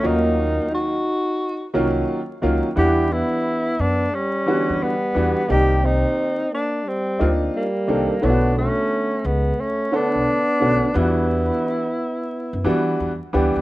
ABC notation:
X:1
M:4/4
L:1/16
Q:"Swing 16ths" 1/4=88
K:Bm
V:1 name="Tenor saxophone"
^D4 F6 z6 | G2 E4 D2 C4 B,4 | G2 _E4 D2 =C2 z2 _B,4 | D2 C4 B,2 C2 D6 |
E12 z4 |]
V:2 name="Upright piano"
[^D,F,^A,C^E]4- [D,F,A,CE] z4 z [D,F,A,CE]2 z2 [D,F,A,CE]2 | [E,G,B,Df]4- [E,G,B,Df] z4 z [D,E,G,B,F]2 z2 [E,G,B,DF]2 | [_E,_B,=CGd]4- [E,B,CGd] z4 z [B,CD_E=F]2 z2 [E,B,CDA]2 | [D,A,B,EFc]4- [D,A,B,EFc] z4 z [D,A,B,Ac]2 z2 [D,A,B,CF]2 |
[E,G,B,D=F^F]4- [E,G,B,D=F^F] z4 z [E,G,B,DF]2 z2 [E,G,B,DG]2 |]
V:3 name="Trombone"
^A,4 ^D6 z6 | E2 B,4 B,2 G,4 G,4 | _E2 =C4 _B,2 G,2 z2 G,4 | B,2 A,4 ^G,2 A,2 B,6 |
B,12 z4 |]
V:4 name="Upright bass" clef=bass
^D,,4 z6 =C,,2 z2 ^C,, z | E,,3 z3 F,,2 z3 E,, z2 E,, z | =C,,4 z6 D,,2 z2 C,, z | B,,,3 z3 C,,2 z3 B,,, z2 B,,, z |
E,,4 z4 z F,, E,2 E,, z D,, ^D,, |]